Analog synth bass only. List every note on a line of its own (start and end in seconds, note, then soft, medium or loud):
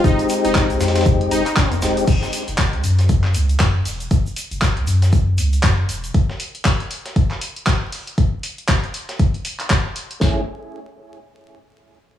0.04 0.16 F1 loud
0.45 0.71 F1 medium
0.70 0.78 C2 loud
0.81 1.28 F2 loud
1.31 1.43 F1 medium
1.72 1.84 F2 medium
1.82 2.03 D#1 medium
2.08 2.19 F#1 loud
2.48 2.75 F#1 medium
2.73 2.82 C#2 loud
2.84 3.36 F#2 loud
3.35 3.55 C#2 medium
3.60 3.81 F#2 loud
3.85 4.06 E1 loud
4.11 4.23 F#1 loud
4.51 4.78 F#1 medium
4.77 4.85 C#2 loud
4.87 5.40 F#2 medium
5.38 5.59 C#2 medium
5.64 5.84 F#2 loud
5.89 6.10 E1 loud
10.21 10.45 F#1 loud